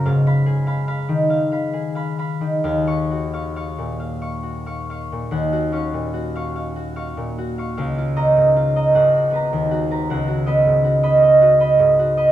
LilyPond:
<<
  \new Staff \with { instrumentName = "Harp" } { \time 6/8 \key ees \minor \tempo 4. = 50 << { r16 ces'''2~ ces'''8. | r16 des'''2~ des'''8.~ | des'''8 des'''2~ des'''8~ | des'''8 bes''4. bes''4 |
r8 ces'''2~ ces'''8 | } \\ { f''16 f''16 aes'16 <f'' ces'''>16 <f'' ces'''>16 ees16 f''16 <f'' ces'''>16 aes'16 <f'' ces'''>16 <f'' ces'''>16 ees16 | f''16 f''16 ges'16 <f'' des'''>16 <f'' des'''>16 bes,16 f''16 <f'' des'''>16 ges'16 <f'' des'''>16 <f'' des'''>16 bes,16 | ges''16 ges'16 f''16 bes,16 ges'16 <f'' des'''>16 f''16 ges'16 <f'' des'''>16 bes,16 ges'16 <f'' des'''>16 | f''16 f'16 ees''16 aes,16 f'16 <ees'' bes''>16 ges''16 ges'16 ces''16 ees,16 ges'16 <ces'' bes''>16 |
ges''16 ges'16 ees''16 aes,16 ges'16 <ees'' ces'''>16 ees''16 ges'16 <ees'' ces'''>16 aes,16 ges'16 <ees'' ces'''>16 | } >> }
  \new Staff \with { instrumentName = "Harp" } { \clef bass \time 6/8 \key ees \minor aes,2. | ees,2. | ees,8 des'2~ des'8 | des,8 des'4 aes,,8 ces'4 |
des,8 ces'2~ ces'8 | }
>>